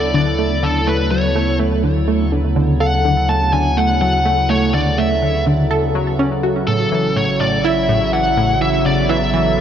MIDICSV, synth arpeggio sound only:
0, 0, Header, 1, 2, 480
1, 0, Start_track
1, 0, Tempo, 483871
1, 864, Time_signature, 4, 2, 24, 8
1, 9529, End_track
2, 0, Start_track
2, 0, Title_t, "Synth arpeggio sound"
2, 0, Program_c, 0, 84
2, 0, Note_on_c, 0, 69, 104
2, 130, Note_off_c, 0, 69, 0
2, 141, Note_on_c, 0, 50, 103
2, 250, Note_off_c, 0, 50, 0
2, 383, Note_on_c, 0, 57, 74
2, 562, Note_off_c, 0, 57, 0
2, 622, Note_on_c, 0, 50, 100
2, 801, Note_off_c, 0, 50, 0
2, 862, Note_on_c, 0, 57, 85
2, 1091, Note_off_c, 0, 57, 0
2, 1104, Note_on_c, 0, 54, 74
2, 1282, Note_off_c, 0, 54, 0
2, 1344, Note_on_c, 0, 57, 99
2, 1451, Note_off_c, 0, 57, 0
2, 1583, Note_on_c, 0, 57, 102
2, 1811, Note_off_c, 0, 57, 0
2, 1823, Note_on_c, 0, 50, 84
2, 2001, Note_off_c, 0, 50, 0
2, 2062, Note_on_c, 0, 57, 79
2, 2241, Note_off_c, 0, 57, 0
2, 2302, Note_on_c, 0, 50, 75
2, 2410, Note_off_c, 0, 50, 0
2, 2540, Note_on_c, 0, 50, 100
2, 2720, Note_off_c, 0, 50, 0
2, 2782, Note_on_c, 0, 69, 99
2, 3011, Note_off_c, 0, 69, 0
2, 3019, Note_on_c, 0, 50, 100
2, 3128, Note_off_c, 0, 50, 0
2, 3261, Note_on_c, 0, 57, 78
2, 3440, Note_off_c, 0, 57, 0
2, 3501, Note_on_c, 0, 50, 97
2, 3681, Note_off_c, 0, 50, 0
2, 3742, Note_on_c, 0, 57, 80
2, 3971, Note_off_c, 0, 57, 0
2, 3982, Note_on_c, 0, 54, 78
2, 4161, Note_off_c, 0, 54, 0
2, 4220, Note_on_c, 0, 57, 100
2, 4329, Note_off_c, 0, 57, 0
2, 4460, Note_on_c, 0, 57, 101
2, 4690, Note_off_c, 0, 57, 0
2, 4699, Note_on_c, 0, 50, 85
2, 4880, Note_off_c, 0, 50, 0
2, 4941, Note_on_c, 0, 57, 76
2, 5121, Note_off_c, 0, 57, 0
2, 5180, Note_on_c, 0, 50, 77
2, 5289, Note_off_c, 0, 50, 0
2, 5423, Note_on_c, 0, 50, 98
2, 5602, Note_off_c, 0, 50, 0
2, 5660, Note_on_c, 0, 69, 105
2, 5890, Note_off_c, 0, 69, 0
2, 5903, Note_on_c, 0, 54, 102
2, 6082, Note_off_c, 0, 54, 0
2, 6142, Note_on_c, 0, 61, 100
2, 6250, Note_off_c, 0, 61, 0
2, 6382, Note_on_c, 0, 66, 75
2, 6611, Note_off_c, 0, 66, 0
2, 6624, Note_on_c, 0, 45, 79
2, 6802, Note_off_c, 0, 45, 0
2, 6862, Note_on_c, 0, 52, 76
2, 7041, Note_off_c, 0, 52, 0
2, 7103, Note_on_c, 0, 45, 75
2, 7210, Note_off_c, 0, 45, 0
2, 7343, Note_on_c, 0, 45, 102
2, 7522, Note_off_c, 0, 45, 0
2, 7584, Note_on_c, 0, 64, 102
2, 7812, Note_off_c, 0, 64, 0
2, 7825, Note_on_c, 0, 45, 105
2, 7931, Note_off_c, 0, 45, 0
2, 8064, Note_on_c, 0, 52, 79
2, 8242, Note_off_c, 0, 52, 0
2, 8302, Note_on_c, 0, 45, 99
2, 8481, Note_off_c, 0, 45, 0
2, 8542, Note_on_c, 0, 52, 80
2, 8771, Note_off_c, 0, 52, 0
2, 8784, Note_on_c, 0, 49, 75
2, 8962, Note_off_c, 0, 49, 0
2, 9019, Note_on_c, 0, 52, 101
2, 9128, Note_off_c, 0, 52, 0
2, 9262, Note_on_c, 0, 52, 99
2, 9491, Note_off_c, 0, 52, 0
2, 9529, End_track
0, 0, End_of_file